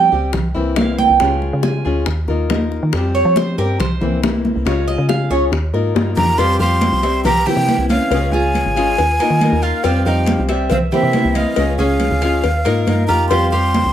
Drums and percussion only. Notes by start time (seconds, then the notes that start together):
0.12 high conga
0.33 high bongo, high conga, low conga
0.55 high conga
0.76 high bongo, low bongo, high conga
0.98 high conga
1.20 high bongo
1.42 high bongo, high conga
1.63 high bongo, high conga
1.86 high conga
2.06 high bongo, high conga
2.28 high bongo, high conga
2.50 high bongo, low bongo, high conga
2.72 high bongo
2.93 high bongo, high conga
3.15 high conga
3.36 high bongo, high conga
3.58 high conga
3.80 high bongo, high conga, low conga
4.02 high conga, low conga
4.23 high bongo, low bongo, high conga
4.45 high conga
4.66 high bongo, high conga
4.88 high bongo, high conga
5.09 high bongo, high conga
5.32 high conga
5.53 high bongo, high conga
5.74 high bongo, high conga
5.96 high bongo, high conga
6.17 low bongo, low conga
6.39 cowbell, high conga
6.60 high conga
6.81 cowbell, high conga
7.03 cowbell, high conga
7.25 cowbell, high conga, low conga
7.47 high conga, low conga
7.68 cowbell, high conga
7.89 cowbell, high conga
8.11 cowbell, high conga
8.33 high conga
8.55 cowbell, high conga
8.76 cowbell, high conga
8.98 cowbell, high conga
9.19 cowbell, high conga
9.41 cowbell, high conga
9.84 cowbell, high conga
10.06 high conga
10.26 cowbell, high conga
10.49 cowbell, high conga
10.70 cowbell, high conga, low conga
10.93 high conga, low conga
11.13 cowbell, high conga
11.35 cowbell, high conga
11.56 cowbell, high conga
11.78 high conga
12.00 cowbell, high conga
12.22 cowbell, high conga
12.44 cowbell, high conga
12.65 cowbell, high conga
12.87 cowbell, high conga
13.31 cowbell, high conga
13.52 high conga
13.74 cowbell, high conga